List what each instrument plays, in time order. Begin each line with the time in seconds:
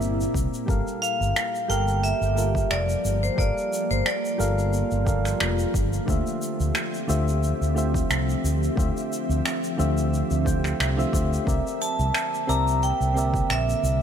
Already playing: ambient pad A#2 A#3 E4, synth keys C4 G4 A#4 D5 E5
0.01 fretless electric bass G1, shaker
0.21 shaker
0.34 fretless electric bass C2, kick, shaker
0.54 shaker
0.66 fretless electric bass G1, ambient pad F3 A#3 G4, synth keys G3 G4 A4 A#4, kick, shaker
0.70 synth keys F5
0.88 shaker
1.02 vibraphone F5, shaker
1.21 fretless electric bass G1, shaker
1.36 finger snap, shaker
1.55 shaker
1.68 fretless electric bass G1, synth keys G3 G4 A4 A#4 F5, vibraphone G5, shaker
1.88 shaker
2.04 vibraphone E5, shaker
2.21 fretless electric bass G1, shaker
2.34 synth keys G3 G4 A4 A#4, shaker
2.38 synth keys F4
2.55 kick, shaker
2.71 fretless electric bass F1, vibraphone D5, finger snap, shaker
2.89 shaker
3.04 fretless electric bass G1, shaker
3.23 vibraphone C5, shaker
3.36 fretless electric bass G1, synth keys G3 G4 A4 A#4, ambient pad F4, vibraphone D5, kick, shaker
3.40 synth keys F5
3.58 shaker
3.73 shaker
3.91 fretless electric bass G1, vibraphone C5, shaker
4.06 vibraphone D5, finger snap, shaker
4.25 shaker
4.38 fretless electric bass G1, synth keys G3 G4 A4 A#4 F5, shaker
4.59 shaker
4.73 shaker
4.91 fretless electric bass G1, shaker
5.05 synth keys G3 G4 A4 A#4, kick, shaker
5.09 synth keys F5
5.25 finger snap, shaker
5.40 fretless electric bass F1, finger snap, shaker
5.59 shaker
5.74 fretless electric bass G1, kick, shaker
5.93 shaker
6.06 fretless electric bass D2, synth keys D3 A3 F4 G4 C5, ambient pad C4 G4 E5, kick, shaker
6.10 synth keys E5
6.27 shaker
6.42 shaker
6.60 fretless electric bass D2, shaker
6.75 finger snap, shaker
6.94 shaker
7.07 fretless electric bass D2, synth keys D3 A3 F4 G4 C5 E5, shaker
7.28 shaker
7.43 shaker
7.61 fretless electric bass D2, shaker
7.74 synth keys D3 A3 F4 G4 C5 E5, shaker
7.94 kick, shaker
8.10 fretless electric bass C2, finger snap, shaker
8.30 shaker
8.44 fretless electric bass D2, shaker
8.63 shaker
8.75 fretless electric bass D2, synth keys D3 A3 F4 G4 C5, kick
8.79 synth keys E5, shaker
8.97 shaker
9.13 shaker
9.29 fretless electric bass D2, shaker
9.46 finger snap, shaker
9.64 shaker
9.77 fretless electric bass D2, synth keys D3 A3 F4 G4 C5 E5, shaker
9.98 shaker
10.14 shaker
10.31 fretless electric bass D2, shaker
10.44 synth keys D3 A3 F4 G4 C5 G5, kick, shaker
10.64 finger snap, shaker
10.80 fretless electric bass C2, finger snap, shaker
10.97 synth keys D3 A3 F4 G4 C5 E5, shaker
11.13 fretless electric bass D2, synth keys D3 A3 F4 G4 C5 E5, kick, shaker
11.33 shaker
11.45 fretless electric bass C2, ambient pad D3 A#3, synth keys C4 G4 A#4 D5, kick, shaker
11.49 synth keys E5
11.67 shaker
11.82 vibraphone A5, shaker
11.99 fretless electric bass C2, shaker
12.14 finger snap, shaker
12.34 shaker
12.47 fretless electric bass C2, synth keys C4 G4 A#4 D5 E5, vibraphone A#5, shaker
12.68 shaker
12.83 vibraphone G5, shaker
13.00 fretless electric bass C2, shaker
13.14 synth keys C4 G4 A#4 D5, shaker
13.18 synth keys E5
13.34 kick, shaker
13.49 fretless electric bass A#1, vibraphone E5, finger snap, shaker
13.70 shaker
13.83 fretless electric bass C2, shaker